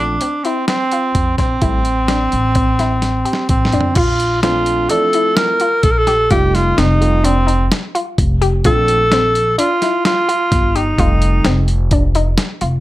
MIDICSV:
0, 0, Header, 1, 6, 480
1, 0, Start_track
1, 0, Tempo, 468019
1, 1659, Time_signature, 5, 2, 24, 8
1, 13129, End_track
2, 0, Start_track
2, 0, Title_t, "Tenor saxophone"
2, 0, Program_c, 0, 66
2, 0, Note_on_c, 0, 62, 94
2, 451, Note_on_c, 0, 60, 81
2, 466, Note_off_c, 0, 62, 0
2, 688, Note_off_c, 0, 60, 0
2, 694, Note_on_c, 0, 60, 97
2, 1377, Note_off_c, 0, 60, 0
2, 1411, Note_on_c, 0, 60, 82
2, 3542, Note_off_c, 0, 60, 0
2, 3583, Note_on_c, 0, 60, 69
2, 4056, Note_on_c, 0, 65, 80
2, 4071, Note_off_c, 0, 60, 0
2, 4534, Note_off_c, 0, 65, 0
2, 4540, Note_on_c, 0, 65, 86
2, 5021, Note_on_c, 0, 69, 94
2, 5036, Note_off_c, 0, 65, 0
2, 5501, Note_on_c, 0, 70, 100
2, 5516, Note_off_c, 0, 69, 0
2, 5986, Note_on_c, 0, 69, 101
2, 6001, Note_off_c, 0, 70, 0
2, 6066, Note_on_c, 0, 70, 79
2, 6082, Note_off_c, 0, 69, 0
2, 6135, Note_on_c, 0, 69, 91
2, 6150, Note_off_c, 0, 70, 0
2, 6467, Note_off_c, 0, 69, 0
2, 6473, Note_on_c, 0, 67, 84
2, 6715, Note_on_c, 0, 65, 81
2, 6730, Note_off_c, 0, 67, 0
2, 6955, Note_on_c, 0, 63, 84
2, 6970, Note_off_c, 0, 65, 0
2, 7431, Note_on_c, 0, 60, 73
2, 7446, Note_off_c, 0, 63, 0
2, 7912, Note_off_c, 0, 60, 0
2, 8880, Note_on_c, 0, 69, 100
2, 9793, Note_off_c, 0, 69, 0
2, 9830, Note_on_c, 0, 65, 89
2, 10275, Note_off_c, 0, 65, 0
2, 10318, Note_on_c, 0, 65, 93
2, 11031, Note_on_c, 0, 63, 73
2, 11046, Note_off_c, 0, 65, 0
2, 11984, Note_off_c, 0, 63, 0
2, 13129, End_track
3, 0, Start_track
3, 0, Title_t, "Synth arpeggio sound"
3, 0, Program_c, 1, 84
3, 220, Note_on_c, 1, 60, 83
3, 368, Note_off_c, 1, 60, 0
3, 465, Note_on_c, 1, 64, 68
3, 763, Note_off_c, 1, 64, 0
3, 949, Note_on_c, 1, 65, 73
3, 1246, Note_off_c, 1, 65, 0
3, 1430, Note_on_c, 1, 60, 74
3, 1577, Note_off_c, 1, 60, 0
3, 1659, Note_on_c, 1, 64, 83
3, 1960, Note_off_c, 1, 64, 0
3, 2141, Note_on_c, 1, 62, 76
3, 2442, Note_off_c, 1, 62, 0
3, 2621, Note_on_c, 1, 60, 77
3, 2773, Note_off_c, 1, 60, 0
3, 2868, Note_on_c, 1, 64, 73
3, 3168, Note_off_c, 1, 64, 0
3, 3336, Note_on_c, 1, 67, 75
3, 3640, Note_off_c, 1, 67, 0
3, 3830, Note_on_c, 1, 62, 69
3, 3980, Note_off_c, 1, 62, 0
3, 4072, Note_on_c, 1, 65, 91
3, 4371, Note_off_c, 1, 65, 0
3, 4550, Note_on_c, 1, 60, 80
3, 4851, Note_off_c, 1, 60, 0
3, 5032, Note_on_c, 1, 62, 78
3, 5182, Note_off_c, 1, 62, 0
3, 5277, Note_on_c, 1, 64, 70
3, 5576, Note_off_c, 1, 64, 0
3, 5752, Note_on_c, 1, 65, 75
3, 6052, Note_off_c, 1, 65, 0
3, 6226, Note_on_c, 1, 67, 75
3, 6378, Note_off_c, 1, 67, 0
3, 6470, Note_on_c, 1, 65, 85
3, 6771, Note_off_c, 1, 65, 0
3, 6952, Note_on_c, 1, 60, 77
3, 7252, Note_off_c, 1, 60, 0
3, 7424, Note_on_c, 1, 62, 79
3, 7577, Note_off_c, 1, 62, 0
3, 7658, Note_on_c, 1, 63, 70
3, 7962, Note_off_c, 1, 63, 0
3, 8151, Note_on_c, 1, 65, 80
3, 8451, Note_off_c, 1, 65, 0
3, 8631, Note_on_c, 1, 67, 83
3, 8781, Note_off_c, 1, 67, 0
3, 8872, Note_on_c, 1, 65, 92
3, 9171, Note_off_c, 1, 65, 0
3, 9362, Note_on_c, 1, 60, 82
3, 9657, Note_off_c, 1, 60, 0
3, 9828, Note_on_c, 1, 62, 86
3, 9978, Note_off_c, 1, 62, 0
3, 10072, Note_on_c, 1, 64, 74
3, 10370, Note_off_c, 1, 64, 0
3, 10549, Note_on_c, 1, 65, 74
3, 10847, Note_off_c, 1, 65, 0
3, 11030, Note_on_c, 1, 67, 82
3, 11178, Note_off_c, 1, 67, 0
3, 11275, Note_on_c, 1, 65, 86
3, 11570, Note_off_c, 1, 65, 0
3, 11748, Note_on_c, 1, 60, 79
3, 12044, Note_off_c, 1, 60, 0
3, 12229, Note_on_c, 1, 62, 80
3, 12375, Note_off_c, 1, 62, 0
3, 12465, Note_on_c, 1, 63, 77
3, 12761, Note_off_c, 1, 63, 0
3, 12936, Note_on_c, 1, 65, 74
3, 13129, Note_off_c, 1, 65, 0
3, 13129, End_track
4, 0, Start_track
4, 0, Title_t, "Grand piano"
4, 0, Program_c, 2, 0
4, 0, Note_on_c, 2, 53, 56
4, 0, Note_on_c, 2, 57, 52
4, 0, Note_on_c, 2, 60, 50
4, 0, Note_on_c, 2, 62, 58
4, 142, Note_off_c, 2, 53, 0
4, 142, Note_off_c, 2, 62, 0
4, 143, Note_off_c, 2, 60, 0
4, 144, Note_off_c, 2, 57, 0
4, 1655, Note_on_c, 2, 57, 54
4, 1656, Note_on_c, 2, 55, 53
4, 1658, Note_on_c, 2, 64, 57
4, 1661, Note_on_c, 2, 60, 51
4, 1826, Note_off_c, 2, 55, 0
4, 1826, Note_off_c, 2, 57, 0
4, 1827, Note_off_c, 2, 64, 0
4, 1829, Note_off_c, 2, 60, 0
4, 4546, Note_on_c, 2, 53, 66
4, 4549, Note_on_c, 2, 62, 72
4, 4550, Note_on_c, 2, 60, 59
4, 4551, Note_on_c, 2, 57, 61
4, 5012, Note_off_c, 2, 53, 0
4, 5015, Note_off_c, 2, 57, 0
4, 5018, Note_off_c, 2, 60, 0
4, 5027, Note_on_c, 2, 53, 64
4, 5030, Note_on_c, 2, 57, 57
4, 5034, Note_on_c, 2, 60, 57
4, 5036, Note_on_c, 2, 64, 74
4, 5223, Note_off_c, 2, 62, 0
4, 5702, Note_off_c, 2, 53, 0
4, 5704, Note_off_c, 2, 57, 0
4, 5706, Note_off_c, 2, 60, 0
4, 5707, Note_off_c, 2, 64, 0
4, 6466, Note_on_c, 2, 57, 54
4, 6468, Note_on_c, 2, 55, 56
4, 6470, Note_on_c, 2, 63, 62
4, 6472, Note_on_c, 2, 60, 50
4, 7142, Note_off_c, 2, 57, 0
4, 7143, Note_off_c, 2, 55, 0
4, 7144, Note_off_c, 2, 63, 0
4, 7145, Note_off_c, 2, 60, 0
4, 7184, Note_on_c, 2, 55, 64
4, 7185, Note_on_c, 2, 57, 59
4, 7185, Note_on_c, 2, 60, 60
4, 7188, Note_on_c, 2, 65, 71
4, 7357, Note_off_c, 2, 55, 0
4, 7357, Note_off_c, 2, 57, 0
4, 7357, Note_off_c, 2, 60, 0
4, 7359, Note_off_c, 2, 65, 0
4, 8875, Note_on_c, 2, 53, 70
4, 8876, Note_on_c, 2, 60, 62
4, 8877, Note_on_c, 2, 57, 58
4, 8878, Note_on_c, 2, 62, 71
4, 9209, Note_off_c, 2, 53, 0
4, 9209, Note_off_c, 2, 60, 0
4, 9210, Note_off_c, 2, 57, 0
4, 9210, Note_off_c, 2, 62, 0
4, 11265, Note_on_c, 2, 55, 59
4, 11266, Note_on_c, 2, 57, 57
4, 11266, Note_on_c, 2, 60, 56
4, 11268, Note_on_c, 2, 63, 67
4, 11933, Note_off_c, 2, 55, 0
4, 11934, Note_off_c, 2, 57, 0
4, 11934, Note_off_c, 2, 60, 0
4, 11935, Note_off_c, 2, 63, 0
4, 13129, End_track
5, 0, Start_track
5, 0, Title_t, "Upright bass"
5, 0, Program_c, 3, 32
5, 0, Note_on_c, 3, 34, 94
5, 173, Note_off_c, 3, 34, 0
5, 1182, Note_on_c, 3, 41, 77
5, 1402, Note_off_c, 3, 41, 0
5, 1420, Note_on_c, 3, 34, 65
5, 1641, Note_off_c, 3, 34, 0
5, 1661, Note_on_c, 3, 33, 78
5, 2342, Note_off_c, 3, 33, 0
5, 2391, Note_on_c, 3, 33, 78
5, 3310, Note_off_c, 3, 33, 0
5, 3583, Note_on_c, 3, 33, 72
5, 3807, Note_off_c, 3, 33, 0
5, 3825, Note_on_c, 3, 41, 68
5, 4048, Note_off_c, 3, 41, 0
5, 4062, Note_on_c, 3, 34, 88
5, 4987, Note_off_c, 3, 34, 0
5, 5986, Note_on_c, 3, 34, 74
5, 6431, Note_off_c, 3, 34, 0
5, 6471, Note_on_c, 3, 29, 87
5, 6914, Note_off_c, 3, 29, 0
5, 6953, Note_on_c, 3, 29, 86
5, 7872, Note_off_c, 3, 29, 0
5, 8393, Note_on_c, 3, 29, 89
5, 8834, Note_off_c, 3, 29, 0
5, 8874, Note_on_c, 3, 34, 92
5, 9789, Note_off_c, 3, 34, 0
5, 10789, Note_on_c, 3, 31, 86
5, 11228, Note_off_c, 3, 31, 0
5, 11267, Note_on_c, 3, 29, 86
5, 11705, Note_off_c, 3, 29, 0
5, 11743, Note_on_c, 3, 29, 94
5, 12657, Note_off_c, 3, 29, 0
5, 12941, Note_on_c, 3, 29, 72
5, 13129, Note_off_c, 3, 29, 0
5, 13129, End_track
6, 0, Start_track
6, 0, Title_t, "Drums"
6, 212, Note_on_c, 9, 42, 74
6, 315, Note_off_c, 9, 42, 0
6, 458, Note_on_c, 9, 42, 53
6, 561, Note_off_c, 9, 42, 0
6, 696, Note_on_c, 9, 38, 101
6, 696, Note_on_c, 9, 42, 73
6, 799, Note_off_c, 9, 38, 0
6, 799, Note_off_c, 9, 42, 0
6, 938, Note_on_c, 9, 42, 54
6, 1041, Note_off_c, 9, 42, 0
6, 1178, Note_on_c, 9, 42, 76
6, 1179, Note_on_c, 9, 36, 95
6, 1280, Note_off_c, 9, 42, 0
6, 1281, Note_off_c, 9, 36, 0
6, 1418, Note_on_c, 9, 38, 27
6, 1418, Note_on_c, 9, 42, 56
6, 1419, Note_on_c, 9, 36, 69
6, 1521, Note_off_c, 9, 36, 0
6, 1521, Note_off_c, 9, 38, 0
6, 1521, Note_off_c, 9, 42, 0
6, 1657, Note_on_c, 9, 42, 73
6, 1659, Note_on_c, 9, 36, 87
6, 1759, Note_off_c, 9, 42, 0
6, 1762, Note_off_c, 9, 36, 0
6, 1896, Note_on_c, 9, 42, 56
6, 1998, Note_off_c, 9, 42, 0
6, 2137, Note_on_c, 9, 38, 92
6, 2137, Note_on_c, 9, 42, 69
6, 2239, Note_off_c, 9, 38, 0
6, 2239, Note_off_c, 9, 42, 0
6, 2379, Note_on_c, 9, 42, 47
6, 2482, Note_off_c, 9, 42, 0
6, 2615, Note_on_c, 9, 42, 74
6, 2620, Note_on_c, 9, 36, 88
6, 2717, Note_off_c, 9, 42, 0
6, 2723, Note_off_c, 9, 36, 0
6, 2862, Note_on_c, 9, 38, 30
6, 2862, Note_on_c, 9, 42, 48
6, 2965, Note_off_c, 9, 38, 0
6, 2965, Note_off_c, 9, 42, 0
6, 3099, Note_on_c, 9, 38, 50
6, 3099, Note_on_c, 9, 42, 68
6, 3201, Note_off_c, 9, 38, 0
6, 3201, Note_off_c, 9, 42, 0
6, 3339, Note_on_c, 9, 42, 49
6, 3418, Note_on_c, 9, 38, 57
6, 3441, Note_off_c, 9, 42, 0
6, 3520, Note_off_c, 9, 38, 0
6, 3578, Note_on_c, 9, 42, 72
6, 3582, Note_on_c, 9, 36, 88
6, 3681, Note_off_c, 9, 42, 0
6, 3685, Note_off_c, 9, 36, 0
6, 3744, Note_on_c, 9, 38, 71
6, 3820, Note_on_c, 9, 42, 48
6, 3846, Note_off_c, 9, 38, 0
6, 3903, Note_on_c, 9, 43, 67
6, 3923, Note_off_c, 9, 42, 0
6, 4006, Note_off_c, 9, 43, 0
6, 4055, Note_on_c, 9, 42, 73
6, 4055, Note_on_c, 9, 49, 83
6, 4062, Note_on_c, 9, 36, 97
6, 4157, Note_off_c, 9, 42, 0
6, 4157, Note_off_c, 9, 49, 0
6, 4165, Note_off_c, 9, 36, 0
6, 4304, Note_on_c, 9, 42, 52
6, 4407, Note_off_c, 9, 42, 0
6, 4543, Note_on_c, 9, 38, 95
6, 4543, Note_on_c, 9, 42, 72
6, 4646, Note_off_c, 9, 38, 0
6, 4646, Note_off_c, 9, 42, 0
6, 4781, Note_on_c, 9, 42, 51
6, 4883, Note_off_c, 9, 42, 0
6, 5020, Note_on_c, 9, 42, 78
6, 5123, Note_off_c, 9, 42, 0
6, 5263, Note_on_c, 9, 42, 58
6, 5365, Note_off_c, 9, 42, 0
6, 5504, Note_on_c, 9, 38, 98
6, 5504, Note_on_c, 9, 42, 73
6, 5606, Note_off_c, 9, 38, 0
6, 5606, Note_off_c, 9, 42, 0
6, 5740, Note_on_c, 9, 42, 56
6, 5843, Note_off_c, 9, 42, 0
6, 5981, Note_on_c, 9, 42, 84
6, 5984, Note_on_c, 9, 36, 106
6, 6083, Note_off_c, 9, 42, 0
6, 6087, Note_off_c, 9, 36, 0
6, 6225, Note_on_c, 9, 38, 30
6, 6225, Note_on_c, 9, 42, 57
6, 6328, Note_off_c, 9, 38, 0
6, 6328, Note_off_c, 9, 42, 0
6, 6467, Note_on_c, 9, 42, 70
6, 6469, Note_on_c, 9, 36, 99
6, 6569, Note_off_c, 9, 42, 0
6, 6571, Note_off_c, 9, 36, 0
6, 6714, Note_on_c, 9, 38, 30
6, 6714, Note_on_c, 9, 42, 56
6, 6817, Note_off_c, 9, 38, 0
6, 6817, Note_off_c, 9, 42, 0
6, 6953, Note_on_c, 9, 38, 95
6, 6953, Note_on_c, 9, 42, 74
6, 7056, Note_off_c, 9, 38, 0
6, 7056, Note_off_c, 9, 42, 0
6, 7197, Note_on_c, 9, 42, 49
6, 7300, Note_off_c, 9, 42, 0
6, 7430, Note_on_c, 9, 42, 73
6, 7533, Note_off_c, 9, 42, 0
6, 7674, Note_on_c, 9, 42, 53
6, 7776, Note_off_c, 9, 42, 0
6, 7914, Note_on_c, 9, 38, 94
6, 7914, Note_on_c, 9, 42, 69
6, 8016, Note_off_c, 9, 38, 0
6, 8016, Note_off_c, 9, 42, 0
6, 8156, Note_on_c, 9, 42, 56
6, 8259, Note_off_c, 9, 42, 0
6, 8392, Note_on_c, 9, 36, 98
6, 8394, Note_on_c, 9, 42, 75
6, 8495, Note_off_c, 9, 36, 0
6, 8497, Note_off_c, 9, 42, 0
6, 8633, Note_on_c, 9, 42, 57
6, 8736, Note_off_c, 9, 42, 0
6, 8866, Note_on_c, 9, 42, 82
6, 8871, Note_on_c, 9, 36, 98
6, 8968, Note_off_c, 9, 42, 0
6, 8974, Note_off_c, 9, 36, 0
6, 9109, Note_on_c, 9, 42, 58
6, 9212, Note_off_c, 9, 42, 0
6, 9350, Note_on_c, 9, 38, 94
6, 9350, Note_on_c, 9, 42, 72
6, 9452, Note_off_c, 9, 38, 0
6, 9452, Note_off_c, 9, 42, 0
6, 9593, Note_on_c, 9, 42, 54
6, 9695, Note_off_c, 9, 42, 0
6, 9832, Note_on_c, 9, 42, 87
6, 9934, Note_off_c, 9, 42, 0
6, 10070, Note_on_c, 9, 38, 34
6, 10070, Note_on_c, 9, 42, 55
6, 10172, Note_off_c, 9, 38, 0
6, 10172, Note_off_c, 9, 42, 0
6, 10308, Note_on_c, 9, 38, 99
6, 10308, Note_on_c, 9, 42, 71
6, 10411, Note_off_c, 9, 38, 0
6, 10411, Note_off_c, 9, 42, 0
6, 10552, Note_on_c, 9, 42, 56
6, 10655, Note_off_c, 9, 42, 0
6, 10787, Note_on_c, 9, 36, 107
6, 10787, Note_on_c, 9, 38, 33
6, 10787, Note_on_c, 9, 42, 76
6, 10889, Note_off_c, 9, 36, 0
6, 10890, Note_off_c, 9, 38, 0
6, 10890, Note_off_c, 9, 42, 0
6, 11032, Note_on_c, 9, 42, 52
6, 11134, Note_off_c, 9, 42, 0
6, 11266, Note_on_c, 9, 36, 102
6, 11267, Note_on_c, 9, 42, 69
6, 11368, Note_off_c, 9, 36, 0
6, 11369, Note_off_c, 9, 42, 0
6, 11504, Note_on_c, 9, 42, 56
6, 11606, Note_off_c, 9, 42, 0
6, 11738, Note_on_c, 9, 38, 94
6, 11738, Note_on_c, 9, 42, 68
6, 11841, Note_off_c, 9, 38, 0
6, 11841, Note_off_c, 9, 42, 0
6, 11978, Note_on_c, 9, 42, 49
6, 12081, Note_off_c, 9, 42, 0
6, 12215, Note_on_c, 9, 42, 69
6, 12219, Note_on_c, 9, 36, 102
6, 12318, Note_off_c, 9, 42, 0
6, 12322, Note_off_c, 9, 36, 0
6, 12459, Note_on_c, 9, 42, 58
6, 12562, Note_off_c, 9, 42, 0
6, 12693, Note_on_c, 9, 38, 97
6, 12693, Note_on_c, 9, 42, 82
6, 12795, Note_off_c, 9, 38, 0
6, 12795, Note_off_c, 9, 42, 0
6, 12933, Note_on_c, 9, 42, 55
6, 13036, Note_off_c, 9, 42, 0
6, 13129, End_track
0, 0, End_of_file